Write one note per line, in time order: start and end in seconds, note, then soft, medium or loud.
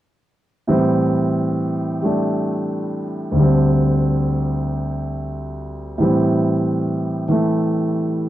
0.67 3.37 A2 soft
0.67 3.38 E3 soft
0.67 2.01 G3 soft
0.67 3.38 C4 medium
2.02 3.37 G3 soft
2.02 3.37 A3 soft
2.02 3.38 D4 soft
3.31 5.96 D2 soft
3.31 5.98 D3 soft
3.39 5.99 G3 soft
3.39 6.01 C4 soft
5.98 8.29 A2 soft
5.98 7.27 E3 soft
5.98 8.29 G3 soft
6.02 8.29 C4 soft
7.29 8.29 E3 soft
7.29 8.29 A3 soft